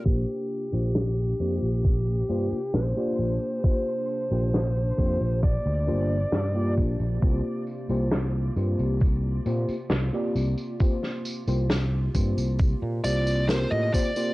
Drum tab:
TB |x-xx--xxx-xx--xx|x-xxx-xxx-xxx-xx|x-xxx-xxx-xxx-xx|x-xxx-xxx-xxx-xx|
SD |----o-------o---|----o-------o---|----o-------o---|-o--o-------o---|
BD |o-------o-------|o-----o-o-----o-|o-------o-------|o-----o-o-----o-|